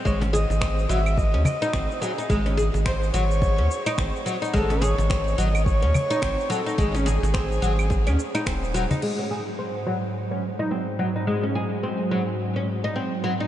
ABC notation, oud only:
X:1
M:4/4
L:1/16
Q:"Swing 16ths" 1/4=107
K:none
V:1 name="Oud"
^G, ^C ^G z ^B, z ^F, z2 C z ^D B, z F, D | ^G, ^C ^G z ^B, z ^F, z2 C z ^D B, z F, D | ^G, ^C ^G z ^B, z ^F, z2 C z ^D B, z F, D | ^G, ^C ^G z ^B, z ^F, z2 C z ^D B, z F, D |
^G, ^C ^G z ^B, z ^F, z2 C z ^D B, z F, D | ^G, ^C ^G z ^B, z ^F, z2 C z ^D B, z F, D |]